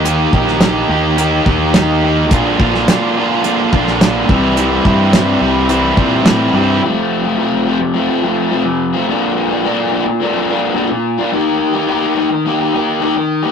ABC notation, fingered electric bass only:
X:1
M:4/4
L:1/8
Q:1/4=107
K:F
V:1 name="Fingered electric bass" clef=bass
_E,, B,,,2 E,,2 E,,3 | B,,, B,,, z3 B,,,2 C,,- | C,, G,,2 C,,2 B,, A,, G,, | z8 |
z8 | z8 |]